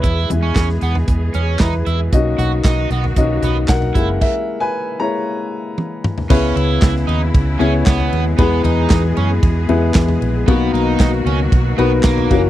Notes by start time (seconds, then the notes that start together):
Already playing: G#3 E4 B4
0.03 E2 B2 E3 E4 G#4, kick, closed hi-hat
0.30 E2 G#3 B3 E4, closed hi-hat, floor tom
0.43 C#4
0.55 E2, kick, snare, clap, closed hi-hat
0.69 snare
0.81 E2 B3, closed hi-hat
0.95 floor tom
1.08 E2, kick, closed hi-hat
1.34 E2 C#4, closed hi-hat
1.59 E2 D#4 E4 B4, kick, snare, clap, closed hi-hat
1.73 floor tom
1.86 E2 E4, closed hi-hat
2.12 B1 D#3 A#3 C#4 D#4 F#4 D#5, kick, closed hi-hat
2.38 B1 F#4, closed hi-hat, floor tom
2.64 B1 D#4, kick, snare, clap, closed hi-hat
2.90 B1 B3, closed hi-hat
3.04 floor tom
3.16 B1 A#3 C#4 D#4 F#4 D#5, kick, closed hi-hat
3.42 B1 B3, closed hi-hat, floor tom
3.68 B1 A#4 F#5, kick, snare, clap, closed hi-hat
3.82 floor tom
3.95 F#1 E3 G#3 A#3 C#4 E4, kick, closed hi-hat
4.21 A#4 E5, kick, crash
4.60 B4 G#5
4.99 G#3 A#3 E4 C#5 A#5
5.78 high tom
6.04 mid tom
6.18 floor tom
6.30 C#2 B2 C#3 G#3 B3 C#4 E4 G#4 B4, kick, crash
6.56 C#2 E4, ride
6.82 C#2, kick, snare, clap, ride
6.96 snare
7.07 D#2 D#4, ride
7.34 C#2, kick, ride
7.59 C#2 B3 C#4 E4 G#4 C#5, ride
7.86 C#2 B3, kick, snare, clap, ride
8.00 floor tom
8.13 D#2, ride
8.38 E2 E3 G#3 B3 G#4 B4, kick, ride
8.63 E2 D#4, floor tom, ride
8.90 E2, kick, snare, clap, ride
9.17 F#2 C#4, ride
9.43 E2, kick, ride
9.69 E2 G#3 B3 E4 G#4 B4, ride
9.94 E2, kick, snare, clap, ride
10.08 floor tom
10.22 A#1, ride
10.48 B1 B2 D#3 F#3 A#3 B3 D#4 F#4 A#4, kick, ride
10.74 B1 D#4, ride
11.00 B1, kick, snare, clap, ride
11.25 C#2 C#4, ride
11.52 B1, kick, ride
11.78 B1 B3 D#4 F#4 A#4 B4, ride
12.03 B1 A#3, kick, snare, clap, ride
12.18 floor tom
12.31 F#1 E3 A#3 C#4 F#4 A#4, kick, ride